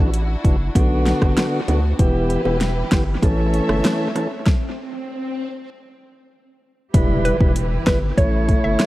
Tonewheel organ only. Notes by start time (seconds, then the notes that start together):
Already playing: E3
0.00 D4 F#4
0.44 E3 D4 F#4
0.75 D3 B3 F#4
1.68 D3 B3 F#4
1.99 E3 B3 G4
2.45 E3 B3 G4
2.92 E3 B3 G4
3.23 E3 C#4 A4
4.15 E3 C#4 A4
6.94 G3 E4 B4
7.40 G3 E4 B4
7.86 G3 E4 B4
8.17 A3 E4 C#5